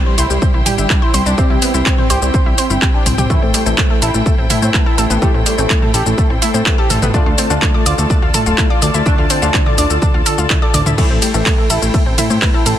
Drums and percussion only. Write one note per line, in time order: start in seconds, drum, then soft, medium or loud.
0.18 open hi-hat loud
0.18 shaker medium
0.30 shaker soft
0.42 kick loud
0.42 shaker soft
0.66 mid tom medium
0.66 open hi-hat loud
0.66 shaker medium
0.78 shaker soft
0.90 kick loud
0.90 clap loud
0.90 shaker soft
1.14 open hi-hat loud
1.14 shaker medium
1.26 shaker soft
1.38 kick loud
1.38 shaker soft
1.62 open hi-hat loud
1.62 shaker medium
1.74 shaker soft
1.86 kick loud
1.86 clap loud
1.86 shaker soft
1.98 mid tom medium
2.10 open hi-hat loud
2.10 shaker medium
2.22 shaker soft
2.34 kick loud
2.34 shaker soft
2.58 open hi-hat loud
2.58 shaker medium
2.70 shaker soft
2.82 kick loud
2.82 clap loud
2.82 shaker soft
3.06 mid tom medium
3.06 open hi-hat loud
3.06 shaker medium
3.18 mid tom medium
3.18 shaker soft
3.30 kick loud
3.30 shaker soft
3.54 open hi-hat loud
3.54 shaker medium
3.66 shaker soft
3.78 kick loud
3.78 clap loud
3.78 shaker soft
4.02 open hi-hat loud
4.02 shaker medium
4.14 shaker soft
4.26 kick loud
4.26 shaker soft
4.50 mid tom medium
4.50 open hi-hat loud
4.50 shaker medium
4.62 shaker soft
4.74 kick loud
4.74 clap loud
4.74 shaker soft
4.98 open hi-hat medium
4.98 shaker medium
5.10 shaker soft
5.22 kick loud
5.22 shaker soft
5.46 open hi-hat loud
5.46 shaker medium
5.58 shaker soft
5.70 kick loud
5.70 clap loud
5.70 shaker soft
5.82 mid tom medium
5.94 open hi-hat medium
5.94 shaker medium
6.06 shaker soft
6.18 kick loud
6.18 shaker soft
6.42 open hi-hat loud
6.42 shaker medium
6.54 shaker soft
6.66 kick loud
6.66 clap loud
6.66 shaker soft
6.90 mid tom medium
6.90 open hi-hat medium
6.90 shaker medium
7.02 mid tom loud
7.02 shaker soft
7.14 kick loud
7.14 shaker soft
7.38 open hi-hat loud
7.38 shaker medium
7.50 shaker soft
7.62 kick loud
7.62 clap loud
7.62 shaker soft
7.86 open hi-hat medium
7.86 shaker medium
7.98 shaker soft
8.10 kick loud
8.10 shaker soft
8.34 mid tom medium
8.34 open hi-hat loud
8.34 shaker medium
8.46 shaker soft
8.58 kick loud
8.58 clap loud
8.58 shaker soft
8.82 open hi-hat medium
8.82 shaker medium
8.94 shaker soft
9.06 kick loud
9.06 shaker soft
9.30 open hi-hat loud
9.30 shaker medium
9.42 shaker soft
9.54 kick loud
9.54 clap loud
9.54 shaker soft
9.66 mid tom medium
9.78 open hi-hat medium
9.78 shaker medium
9.90 shaker soft
10.02 kick loud
10.02 shaker soft
10.26 open hi-hat loud
10.26 shaker medium
10.38 shaker soft
10.50 kick loud
10.50 clap loud
10.50 shaker soft
10.74 mid tom medium
10.74 open hi-hat medium
10.74 shaker medium
10.86 mid tom medium
10.86 shaker soft
10.98 kick loud
10.98 crash medium
10.98 ride medium
10.98 shaker soft
11.22 open hi-hat loud
11.22 ride medium
11.22 shaker medium
11.34 shaker soft
11.46 kick loud
11.46 clap loud
11.46 ride medium
11.46 shaker soft
11.70 open hi-hat loud
11.70 ride medium
11.70 shaker medium
11.82 shaker soft
11.94 kick loud
11.94 ride medium
11.94 shaker soft
12.18 mid tom medium
12.18 open hi-hat loud
12.18 ride medium
12.18 shaker medium
12.30 shaker soft
12.42 kick loud
12.42 clap loud
12.42 ride medium
12.42 shaker soft
12.66 open hi-hat medium
12.66 ride medium
12.66 shaker medium